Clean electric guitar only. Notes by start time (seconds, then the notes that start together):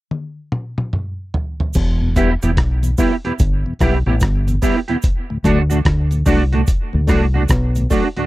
2.16 B3 E4 G4
2.43 B3 E4 G4
2.98 B3 E4 G4
3.25 B3 E4 G4
3.81 B3 E4 G4
4.07 B3 E4 G4
4.62 B3 E4 G4
4.88 B3 E4 G4
5.44 A3 D4 F#4
5.70 A3 D4 F#4
6.26 A3 D4 F#4
6.53 A3 D4 F#4
7.08 A3 D4 F#4
7.34 A3 D4 F#4
7.91 A3 D4 F#4
8.17 A3 D4 F#4